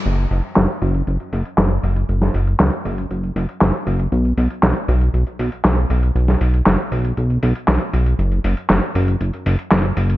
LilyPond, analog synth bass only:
\new Staff \with { instrumentName = "Analog synth bass" } { \clef bass \time 4/4 \key fis \phrygian \tempo 4 = 118 fis,,8 fis,,8 fis,,8 fis,,8 fis,,8 fis,,8 fis,,8 fis,,8 | fis,,8 fis,,8 cis,8 fis,,8 fis,,8 fis,,8 fis,,8 fis,,8 | b,,8 b,,8 b,,8 b,,8 b,,8 b,,8 b,,8 b,,8 | b,,8 b,,8 fis,,8 b,,8 b,,8 b,,8 b,,8 b,,8 |
fis,,8 fis,,8 fis,,8 fis,,8 fis,,8 fis,,8 fis,,8 fis,,8 | }